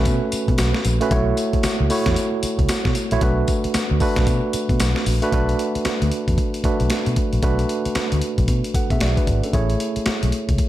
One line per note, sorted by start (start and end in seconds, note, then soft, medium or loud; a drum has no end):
0.00 1.01 A3 medium
0.00 1.01 C#4 medium
0.00 1.02 F#4 medium
0.00 1.02 B4 loud
0.05 0.19 B2 loud
0.05 kick loud
0.05 closed hi-hat medium
0.05 tambourine medium
0.32 muted fingered electric bass stroke soft
0.32 closed hi-hat medium
0.32 tambourine medium
0.48 0.56 B2 loud
0.48 kick medium
0.48 closed hi-hat soft
0.58 0.72 B1 medium
0.58 snare loud
0.58 closed hi-hat medium
0.58 tambourine medium
0.75 snare medium
0.85 0.98 A#1 medium
0.85 closed hi-hat medium
0.85 tambourine medium
1.01 1.08 A3 medium
1.01 1.08 C#4 medium
1.01 1.08 F#4 medium
1.01 1.08 B4 loud
1.01 closed hi-hat medium
1.11 1.32 B1 loud
1.11 1.63 A3 medium
1.11 1.63 E4 medium
1.11 1.63 F#4 medium
1.11 1.63 C#5 loud
1.11 kick loud
1.11 closed hi-hat medium
1.37 closed hi-hat medium
1.37 tambourine medium
1.53 muted fingered electric bass stroke medium
1.53 kick medium
1.53 closed hi-hat medium
1.63 muted fingered electric bass stroke soft
1.63 snare loud
1.63 closed hi-hat medium
1.63 tambourine medium
1.80 1.88 C#2 loud
1.90 2.61 A3 medium
1.90 2.61 E4 medium
1.90 2.62 F#4 medium
1.90 2.62 C#5 medium
1.90 open hi-hat medium
1.90 tambourine medium
2.06 2.14 E2 loud
2.06 kick medium
2.06 snare medium
2.06 closed hi-hat medium
2.16 closed hi-hat medium
2.16 tambourine medium
2.43 muted fingered electric bass stroke soft
2.43 closed hi-hat medium
2.43 tambourine medium
2.59 2.67 C#2 medium
2.59 kick medium
2.59 closed hi-hat soft
2.69 snare loud
2.69 closed hi-hat medium
2.69 tambourine medium
2.85 2.93 B2 loud
2.85 kick medium
2.85 snare medium
2.95 closed hi-hat medium
2.95 tambourine medium
3.11 3.20 A#1 loud
3.11 3.18 A3 medium
3.11 3.18 E4 medium
3.11 3.19 F#4 medium
3.11 3.19 C#5 medium
3.11 closed hi-hat medium
3.21 3.43 B1 loud
3.21 3.73 A3 medium
3.21 3.74 D4 medium
3.21 3.74 F#4 medium
3.21 3.74 B4 loud
3.21 kick loud
3.21 closed hi-hat medium
3.48 kick medium
3.48 closed hi-hat medium
3.48 tambourine medium
3.64 muted fingered electric bass stroke soft
3.64 closed hi-hat medium
3.74 muted fingered electric bass stroke soft
3.74 snare loud
3.74 closed hi-hat medium
3.74 tambourine medium
3.91 3.99 D2 medium
4.00 4.72 A3 medium
4.00 4.72 D4 medium
4.00 4.72 F#4 medium
4.00 4.72 B4 loud
4.00 kick loud
4.00 open hi-hat medium
4.00 tambourine medium
4.16 4.25 B1 medium
4.16 kick medium
4.16 snare medium
4.16 closed hi-hat medium
4.27 4.40 B2 loud
4.27 kick medium
4.27 closed hi-hat medium
4.27 tambourine medium
4.53 muted fingered electric bass stroke soft
4.53 closed hi-hat medium
4.53 tambourine medium
4.69 4.77 B2 loud
4.69 kick medium
4.69 closed hi-hat soft
4.80 4.93 B1 loud
4.80 snare loud
4.80 closed hi-hat medium
4.80 tambourine medium
4.96 snare medium
5.06 5.19 A#1 loud
5.06 open hi-hat medium
5.06 tambourine medium
5.22 5.29 A3 medium
5.22 5.29 D4 medium
5.22 5.29 F#4 medium
5.22 5.29 B4 loud
5.22 closed hi-hat soft
5.32 5.53 B1 medium
5.32 6.03 A3 medium
5.32 6.03 D4 medium
5.32 6.04 F#4 medium
5.32 6.04 B4 medium
5.32 kick loud
5.32 closed hi-hat medium
5.49 closed hi-hat soft
5.59 closed hi-hat medium
5.75 muted fingered electric bass stroke soft
5.75 closed hi-hat soft
5.85 muted fingered electric bass stroke soft
5.85 snare loud
5.85 closed hi-hat medium
6.02 6.10 D2 medium
6.02 closed hi-hat medium
6.12 closed hi-hat medium
6.28 6.36 E2 medium
6.28 kick medium
6.28 closed hi-hat medium
6.38 kick loud
6.38 closed hi-hat medium
6.54 closed hi-hat medium
6.64 7.16 A3 medium
6.64 7.16 D4 medium
6.64 7.16 F#4 medium
6.64 7.16 B4 medium
6.64 muted fingered electric bass stroke soft
6.64 kick loud
6.64 closed hi-hat medium
6.80 6.88 B1 medium
6.80 closed hi-hat soft
6.90 snare loud
6.90 closed hi-hat medium
7.06 7.15 B2 loud
7.06 closed hi-hat soft
7.16 kick medium
7.16 closed hi-hat medium
7.33 7.41 A#1 medium
7.33 closed hi-hat soft
7.43 7.64 B1 loud
7.43 8.14 A3 medium
7.43 8.14 D4 medium
7.43 8.14 F#4 medium
7.43 8.14 B4 loud
7.43 kick loud
7.43 closed hi-hat medium
7.59 closed hi-hat soft
7.69 closed hi-hat medium
7.85 muted fingered electric bass stroke soft
7.85 closed hi-hat soft
7.95 muted fingered electric bass stroke soft
7.95 snare loud
7.95 closed hi-hat medium
8.12 8.20 D2 medium
8.12 closed hi-hat medium
8.21 closed hi-hat medium
8.38 8.46 B1 medium
8.38 kick medium
8.38 closed hi-hat medium
8.48 8.61 B2 loud
8.48 kick medium
8.48 closed hi-hat medium
8.64 closed hi-hat medium
8.74 8.91 A4 medium
8.74 8.90 F#5 medium
8.74 muted fingered electric bass stroke soft
8.74 kick loud
8.74 closed hi-hat medium
8.90 8.99 B2 medium
8.90 9.01 G#4 medium
8.90 9.00 E5 medium
8.90 kick medium
8.90 closed hi-hat soft
9.00 9.14 B1 loud
9.00 9.17 F#4 medium
9.00 9.17 D5 medium
9.00 snare loud
9.00 closed hi-hat medium
9.17 9.43 D4 medium
9.17 9.42 B4 medium
9.17 kick medium
9.17 closed hi-hat medium
9.27 9.40 G#1 medium
9.27 kick medium
9.27 closed hi-hat medium
9.43 9.69 C#4 medium
9.43 9.69 A4 medium
9.43 closed hi-hat soft
9.53 9.74 A1 loud
9.53 10.24 A3 medium
9.53 10.24 E4 medium
9.53 10.25 G#4 medium
9.53 10.25 C#5 medium
9.53 kick loud
9.53 closed hi-hat medium
9.70 closed hi-hat soft
9.80 closed hi-hat medium
9.96 muted fingered electric bass stroke soft
9.96 closed hi-hat soft
10.06 muted fingered electric bass stroke soft
10.06 snare loud
10.06 closed hi-hat medium
10.23 10.31 B1 medium
10.23 closed hi-hat medium
10.32 closed hi-hat medium
10.49 10.57 C#2 loud
10.49 kick medium
10.49 closed hi-hat medium
10.58 kick medium
10.58 closed hi-hat medium